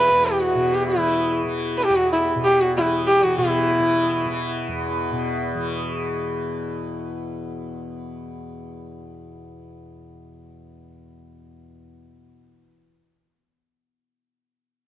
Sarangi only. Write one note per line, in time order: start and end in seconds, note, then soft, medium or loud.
0.00 0.28 B4 loud
0.26 0.44 G4 loud
0.42 0.75 F#4 medium
0.74 0.87 G4 medium
0.88 1.31 E4 medium
1.77 1.85 B4 medium
1.84 1.98 G4 loud
1.97 2.12 F#4 loud
2.12 2.26 E4 medium
2.44 2.62 G4 loud
2.61 2.75 F#4 medium
2.77 2.89 E4 medium
3.07 3.25 G4 loud
3.23 3.37 F#4 loud
3.38 4.56 E4 loud